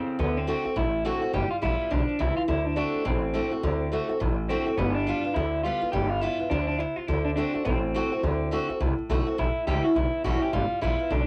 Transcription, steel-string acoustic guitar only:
0.00 0.18 C#3 medium
0.19 0.46 D3 medium
0.47 0.64 D3 medium
0.47 0.64 A3 medium
0.47 0.64 C4 medium
0.47 0.63 F#4 loud
0.65 0.76 C4 soft
0.65 0.76 F#4 medium
0.76 1.31 A2 medium
1.05 1.21 D3 loud
1.05 1.21 A3 medium
1.05 1.22 C4 loud
1.05 1.20 F#4 loud
1.22 1.34 C4 soft
1.22 1.33 F#4 medium
1.33 1.60 G3 medium
1.62 1.89 G3 medium
1.62 1.90 B3 medium
1.62 1.90 F4 medium
1.91 2.18 F3 medium
2.19 2.47 E3 medium
2.48 2.75 D3 medium
2.76 3.04 D3 medium
2.76 3.04 A3 medium
2.76 3.05 C4 medium
2.76 3.05 F#4 loud
3.05 3.61 A2 medium
3.34 3.51 D3 medium
3.34 3.51 A3 loud
3.34 3.51 C4 medium
3.34 3.50 F#4 medium
3.51 3.63 C4 soft
3.51 3.63 F#4 medium
3.63 3.90 D3 loud
3.92 4.09 D3 medium
3.92 4.09 A3 medium
3.92 4.09 C4 medium
3.92 4.08 F#4 loud
4.09 4.21 C4 soft
4.09 4.20 F#4 medium
4.20 4.76 A2 medium
4.49 4.66 D3 medium
4.49 4.66 A3 loud
4.49 4.67 C4 medium
4.49 4.65 F#4 medium
4.66 4.78 C4 medium
4.66 4.78 F#4 medium
4.78 5.05 G3 medium
5.07 5.24 G3 medium
5.07 5.24 B3 medium
5.07 5.23 F4 medium
5.24 5.36 B3 soft
5.24 5.35 F4 medium
5.36 5.91 D3 loud
5.65 5.81 G3 medium
5.65 5.82 B3 loud
5.65 5.80 F4 loud
5.81 5.94 B3 medium
5.81 5.93 F4 medium
5.93 6.20 G3 medium
6.21 6.38 G3 medium
6.21 6.39 B3 medium
6.21 6.38 F4 loud
6.39 6.51 B3 soft
6.39 6.50 F4 medium
6.51 6.79 F3 loud
6.80 7.07 C3 medium
7.08 7.36 D3 medium
7.37 7.54 D3 medium
7.37 7.54 A3 medium
7.37 7.54 C4 loud
7.37 7.52 F#4 loud
7.54 7.66 C4 soft
7.54 7.65 F#4 medium
7.65 8.21 A2 medium
7.94 8.11 D3 medium
7.94 8.11 A3 loud
7.94 8.12 C4 medium
7.94 8.11 F#4 loud
8.12 8.24 C4 medium
8.12 8.23 F#4 medium
8.24 8.50 D3 medium
8.51 8.68 D3 medium
8.51 8.69 A3 loud
8.51 8.69 C4 medium
8.51 8.67 F#4 loud
8.69 8.81 C4 medium
8.69 8.80 F#4 medium
8.80 9.36 A2 loud
9.10 9.26 D3 medium
9.10 9.26 A3 medium
9.10 9.27 C4 loud
9.10 9.25 F#4 medium
9.27 9.39 C4 soft
9.27 9.38 F#4 medium
9.38 9.93 A2 medium
9.67 9.84 E3 medium
9.67 9.84 G3 loud
9.67 9.84 C#4 loud
9.67 9.83 E4 medium
9.84 9.96 C#4 soft
9.84 9.95 E4 medium
9.96 10.51 E2 medium
10.24 10.41 E3 medium
10.24 10.41 G3 loud
10.24 10.41 C#4 loud
10.24 10.40 E4 loud
10.42 10.53 C#4 medium
10.42 10.53 E4 medium
10.53 10.80 G3 loud
10.81 10.98 G3 medium
10.81 10.98 B3 loud
10.81 10.98 F4 loud
10.99 11.11 B3 soft
10.99 11.10 F4 medium
11.10 11.27 D3 medium

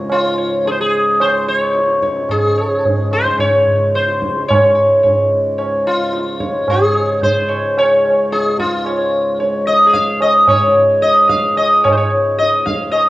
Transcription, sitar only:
0.00 0.11 F4 medium
0.12 0.67 F4 medium
0.38 0.63 C#5 soft
0.67 0.71 G#4 medium
0.72 0.78 C5 medium
0.81 1.21 G#4 medium
1.21 1.48 C5 medium
1.48 1.99 C#5 medium
2.03 2.28 C#5 soft
2.31 3.15 G#4 medium
2.58 2.83 C#5 soft
3.13 3.40 C5 medium
3.40 3.95 C#5 medium
3.95 4.46 C5 medium
4.49 4.74 C#5 medium
4.75 5.01 C#5 soft
5.03 5.29 C#5 soft
5.58 5.84 C#5 soft
5.87 6.69 F4 medium
6.40 6.66 C#5 soft
6.70 7.20 G#4 medium
6.94 7.20 C#5 soft
7.23 7.79 C5 medium
7.48 7.75 C#5 soft
7.78 8.34 C#5 loud
8.32 8.59 G#4 medium
8.59 9.37 F4 medium
8.86 9.12 C#5 soft
9.40 9.66 C#5 soft
9.67 9.89 D#5 medium
9.87 9.94 G#4 medium
9.93 10.21 F5 medium
10.22 10.47 D#5 medium
10.48 10.74 C#5 medium
11.02 11.29 D#5 medium
11.29 11.57 F5 medium
11.57 11.86 D#5 medium
11.84 11.91 C#5 medium
11.92 11.97 C5 medium
11.97 12.11 C#5 medium
12.38 12.65 D#5 medium
12.66 12.91 F5 medium
12.92 13.09 D#5 medium

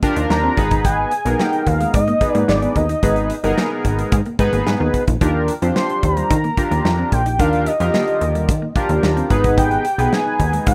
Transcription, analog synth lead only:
0.31 0.81 A#5 loud
0.85 1.42 G#5 loud
1.40 1.69 G5 loud
1.67 1.94 F5 medium
1.95 2.32 D#5 loud
2.32 2.45 D5 loud
2.49 2.78 D5 medium
2.76 3.58 D#5 medium
5.76 6.05 C6 medium
6.04 7.14 A#5 loud
7.12 7.41 G5 medium
7.40 7.68 F5 loud
7.67 8.76 D#5 medium
9.58 10.15 G5 loud
10.13 10.67 G#5 loud
10.68 10.74 G5 loud

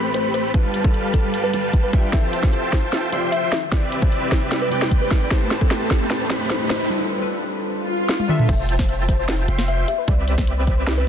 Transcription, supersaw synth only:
0.00 0.52 A3 medium
0.00 0.52 G4 medium
0.00 0.52 B4 medium
0.00 0.52 C5 medium
0.00 0.52 B5 loud
0.54 1.51 G3 medium
0.54 1.51 G4 medium
0.54 1.51 B4 medium
0.54 1.51 F5 medium
0.54 1.51 A5 loud
1.53 1.91 G3 medium
1.53 1.91 G4 medium
1.53 1.91 B4 medium
1.53 1.91 F5 medium
1.53 1.91 A5 medium
1.93 2.11 G3 medium
1.93 2.11 G4 medium
1.93 2.11 B4 medium
1.93 2.11 F5 medium
1.93 2.11 G5 loud
2.13 3.10 F4 medium
2.13 3.10 C5 medium
2.13 3.10 E5 medium
2.13 3.10 G5 medium
2.13 3.10 A5 medium
3.12 3.51 F4 medium
3.12 3.51 C5 medium
3.12 3.51 E5 medium
3.12 3.51 G5 medium
3.12 3.51 C6 loud
3.72 4.69 C4 medium
3.72 4.69 G4 medium
3.72 4.69 B4 medium
3.72 4.69 D5 medium
3.72 4.69 E5 loud
4.71 5.29 C4 loud
4.71 5.29 G4 medium
4.71 5.29 B4 medium
4.71 5.29 D5 medium
4.71 5.29 G5 loud
5.31 6.28 A3 medium
5.31 6.28 G4 medium
5.31 6.28 B4 medium
5.31 6.28 C5 medium
5.31 6.28 A5 loud
6.30 6.88 A3 medium
6.30 6.88 G4 medium
6.30 6.88 B4 medium
6.30 6.88 C5 medium
6.30 6.88 B5 loud
8.49 9.46 F4 medium
8.49 9.46 C5 medium
8.49 9.46 E5 medium
8.49 9.46 G5 medium
8.49 9.46 A5 loud
9.48 9.87 F4 medium
9.48 9.87 C5 medium
9.48 9.87 E5 medium
9.48 9.87 G5 medium
9.48 9.87 C6 loud
10.08 11.05 C4 medium
10.08 11.05 G4 medium
10.08 11.05 B4 medium
10.08 11.05 D5 medium
10.08 11.05 E5 loud

